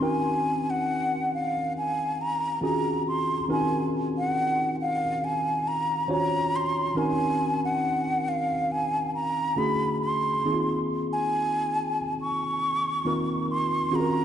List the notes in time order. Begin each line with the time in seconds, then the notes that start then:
0.00 D#3 C4 C#4 D#4 F#4 A#4 G#5
0.70 F#5
1.34 F5
1.78 G#5
2.21 A#5
2.61 D#3 C4 C#4 F4 F#4 G#4 A#5
3.08 C6
3.48 D#3 C4 C#4 D#4 F#4 A#4 G#5
4.18 F#5
4.81 F5
5.24 G#5
5.68 A#5
6.08 D#3 C#4 F4 F#4 C5 C#5
6.12 A#5
6.56 C6
6.94 D#3 C4 C#4 D#4 F#4 A#4 G#5
7.65 F#5
8.28 F5
8.72 G#5
9.15 A#5
9.56 D3 A3 C#4 E4 F#4 G#4 B5
10.01 C6
10.44 D#3 A#3 C4 D#4 E4 G#4
10.53 F4
11.13 G#5
12.21 C#6
13.05 D#3 A#3 C4 D#4 F4 A#4
13.51 C6
13.91 D#3 C4 C#4 F4 F#4 G#4
13.95 A#5
14.00 A#4